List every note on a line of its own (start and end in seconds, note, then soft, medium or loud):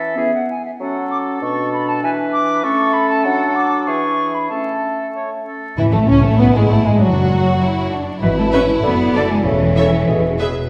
0.00 0.16 E3 soft
0.00 0.17 C#4 soft
0.00 0.16 A4 soft
0.00 0.33 E5 medium
0.15 0.31 E3 soft
0.15 0.48 B3 soft
0.15 0.32 G#4 soft
0.34 0.49 F#5 soft
0.50 0.64 G#5 soft
0.65 0.71 E5 soft
0.79 1.38 F#3 soft
0.79 1.37 C#4 soft
0.79 2.06 A4 soft
0.79 1.10 F#5 medium
1.10 1.17 D6 medium
1.42 2.02 B2 soft
1.42 2.61 D4 soft
1.42 1.72 C#6 soft
1.73 1.90 B5 medium
1.88 2.02 A5 medium
2.03 2.65 E3 medium
2.03 2.65 B4 medium
2.03 2.10 G#5 medium
2.32 2.65 D6 medium
2.64 3.27 A3 medium
2.64 3.27 C#4 medium
2.64 3.89 A4 medium
2.64 2.95 C#6 medium
2.93 3.09 B5 medium
3.09 3.25 A5 medium
3.24 3.89 F#3 medium
3.24 4.50 D4 medium
3.24 3.56 F#5 medium
3.54 3.85 D6 medium
3.85 4.50 E3 medium
3.85 4.50 G#4 soft
3.85 4.36 C#6 medium
4.34 4.48 B5 medium
4.49 5.44 A3 soft
4.49 5.44 C#4 soft
4.49 5.07 A4 soft
4.49 5.12 A5 soft
5.16 5.30 C#5 soft
5.47 5.77 A4 soft
5.77 5.91 E1 medium
5.77 6.66 A2 medium
5.77 5.84 E3 soft
5.77 5.92 E3 medium
5.77 5.92 E3 soft
5.77 6.35 C#4 soft
5.77 5.83 E4 medium
5.77 5.95 E5 soft
5.92 5.99 A1 soft
5.92 5.98 A3 soft
5.92 5.99 A3 medium
5.92 6.09 A3 soft
5.92 6.09 A3 medium
5.92 6.09 A3 soft
5.92 6.10 A5 soft
6.08 6.23 C#2 medium
6.08 6.23 C#4 medium
6.08 6.26 C#4 medium
6.08 6.23 C#4 medium
6.08 6.25 C#4 soft
6.08 6.16 C#4 medium
6.08 6.23 C#6 medium
6.23 6.38 A1 medium
6.23 6.39 A3 soft
6.23 6.37 A3 medium
6.23 6.41 A3 soft
6.23 6.39 A3 soft
6.23 6.39 A3 medium
6.23 6.40 A5 soft
6.38 6.54 B1 medium
6.38 6.45 B3 medium
6.38 6.54 B3 medium
6.38 6.45 B3 medium
6.38 6.57 B3 medium
6.38 6.54 B3 medium
6.38 7.00 E4 medium
6.38 6.54 B5 medium
6.53 6.68 G#1 soft
6.53 6.70 G#3 soft
6.53 6.60 G#3 soft
6.53 6.69 G#3 medium
6.53 6.70 G#3 medium
6.53 6.72 G#3 soft
6.53 6.70 G#3 soft
6.53 6.72 G#5 soft
6.68 6.76 A1 medium
6.68 6.84 A3 medium
6.68 6.75 A3 soft
6.68 6.84 A3 medium
6.68 6.85 A3 soft
6.68 6.87 A3 medium
6.68 6.78 A3 soft
6.68 6.87 A5 soft
6.84 6.90 G#1 soft
6.84 6.97 G#3 soft
6.84 6.91 G#3 soft
6.84 7.00 G#3 soft
6.84 7.03 G#3 soft
6.84 7.01 G#3 medium
6.84 7.00 G#5 soft
6.98 7.89 F#1 medium
6.98 7.88 F#3 medium
6.98 7.91 F#3 medium
6.98 7.07 F#3 medium
6.98 7.90 F#3 soft
6.98 7.30 D4 soft
6.98 7.89 F#4 medium
6.98 7.89 F#5 medium
7.02 7.92 F#3 soft
7.08 7.14 E3 soft
7.15 7.91 F#3 medium
7.31 7.61 F#4 medium
7.62 7.91 E4 medium
7.92 8.22 D4 soft
8.21 8.73 G#1 medium
8.21 8.36 B2 soft
8.21 8.28 E3 medium
8.21 8.79 E4 soft
8.21 9.43 E4 medium
8.21 8.79 B4 soft
8.21 8.35 B4 soft
8.21 8.35 E5 medium
8.38 8.44 A3 medium
8.38 8.52 A5 medium
8.51 8.66 B2 soft
8.51 8.62 C#4 medium
8.51 8.65 B4 soft
8.51 8.67 B4 medium
8.51 8.66 E5 medium
8.51 8.61 C#6 medium
8.82 9.35 F#1 medium
8.82 8.97 D3 medium
8.82 9.14 B3 medium
8.82 9.45 F#4 soft
8.82 8.96 A4 soft
8.82 9.45 D5 medium
8.82 9.13 B5 medium
9.14 9.28 D3 soft
9.14 9.30 A3 medium
9.14 9.28 A4 soft
9.14 9.29 A4 medium
9.14 9.28 D5 soft
9.14 9.29 D5 medium
9.14 9.32 A5 medium
9.30 9.46 G#3 medium
9.30 9.45 G#5 medium
9.45 9.97 E1 medium
9.45 10.04 E2 soft
9.45 9.59 C#3 soft
9.45 10.39 E3 medium
9.45 10.37 C#4 medium
9.45 9.60 A4 soft
9.45 10.07 A4 soft
9.45 10.06 C#5 soft
9.45 10.38 E5 medium
9.76 9.91 C#3 soft
9.76 9.90 A4 soft
9.76 9.91 A4 soft
9.76 9.92 C#5 soft
9.76 9.91 E5 soft
10.07 10.60 E1 soft
10.07 10.22 B2 soft
10.07 10.22 G#4 soft
10.07 10.39 G#4 soft
10.07 10.38 B4 soft
10.39 10.53 B2 soft
10.39 10.53 G#4 soft
10.39 10.54 G#4 soft
10.39 10.54 B4 soft
10.39 10.53 E5 soft